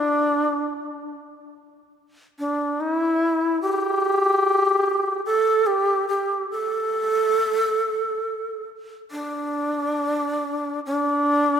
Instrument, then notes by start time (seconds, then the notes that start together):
shakuhachi
Already playing: D4
2.39 D4
2.81 E4
3.62 G4
5.26 A4
5.67 G4
6.09 G4
6.51 A4
9.11 D4
10.86 D4